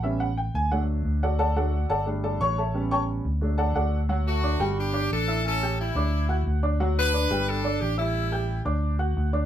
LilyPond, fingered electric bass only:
\new Staff \with { instrumentName = "Fingered electric bass" } { \clef bass \time 4/4 \key d \major \tempo 4 = 178 a,,4. d,4. d,4~ | d,4. g,,4. a,,4~ | a,,4. d,4. d,4~ | d,4. g,,4. a,,4~ |
a,,4. d,4. d,4~ | d,4. g,,4. a,,4~ | a,,4. d,4. d,4 | }